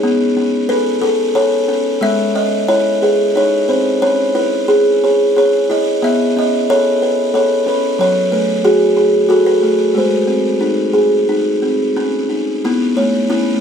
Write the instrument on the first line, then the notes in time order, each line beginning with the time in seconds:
kalimba
0.03 B3
0.37 C#4
0.69 A4 B4
1.02 A4 B4
1.35 A4 C#5
1.68 C#4
2.01 G#3 E5
2.35 C#4 D#5
2.68 E4 C#5
3.02 G#4 B4
3.35 D#4 C#5
3.69 C4 C5
4.02 C#4 C#5
4.35 E4 B4
4.68 G#4
5.04 G#4 C#5
5.37 G#4 C#5
5.70 E4 D#5
6.02 B3 E5
6.37 C#4 D#5
6.70 A4 C#5
7.02 B4
7.34 A4 C#5
7.66 C#4 B4
7.99 F#3 C#5
8.32 A3 B4
8.64 F#4 G#4
8.97 G#4
9.29 F#4 A4
9.47 B4
9.63 A3
9.95 G#3 C5
10.27 C4
10.61 D#4
10.94 G#4
11.29 D#4
11.62 C4
11.97 C#4
12.29 D#4
12.65 B3 E4
12.97 A3 C#5
13.30 C#4 E4
13.54 A3